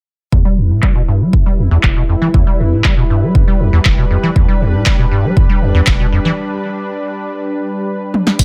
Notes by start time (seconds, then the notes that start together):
0.32 E2 G3 E4 B4, kick
0.45 G3
0.58 E2
0.70 A2
0.82 G3, kick, clap
0.96 B2
1.08 G2
1.21 G3
1.33 E2, kick
1.46 G3
1.58 E2
1.71 E2
1.83 E1, kick, clap
1.96 B2
2.09 F2
2.22 E3
2.34 E2, kick
2.47 G3
2.59 E2
2.72 A2
2.84 G3, kick, clap
2.97 B2
3.10 G2
3.23 G3
3.35 E2, kick
3.48 G3
3.60 E2
3.73 E2
3.85 E1, kick, clap
3.98 B2
4.11 F2
4.23 E3
4.36 E2 D4, kick
4.48 G3
4.61 E2
4.74 A2
4.86 G3, kick, clap
4.99 B2
5.11 G2
5.24 G3
5.37 E2, kick
5.49 G3
5.62 E2
5.75 E2
5.87 E1, kick, clap
6.00 B2
6.12 F2
6.25 E3
8.14 high tom
8.27 snare
8.39 E2 G3 E4 B4, kick, closed hi-hat, tambourine